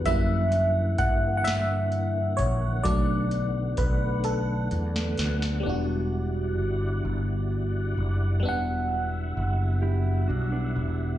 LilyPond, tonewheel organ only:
<<
  \new Staff \with { instrumentName = "Tonewheel organ" } { \time 6/8 \key e \minor \tempo 4. = 43 << { fis''2.~ | fis''2. | fis''2.~ | fis''2. | } \\ { ais2. | b2. | d''2. | e''2. | } >> }
  \new Staff \with { instrumentName = "Tonewheel organ" } { \clef bass \time 6/8 \key e \minor <d e>2. | <d a>2. | <g e'>2.~ | <g e'>2. | }
>>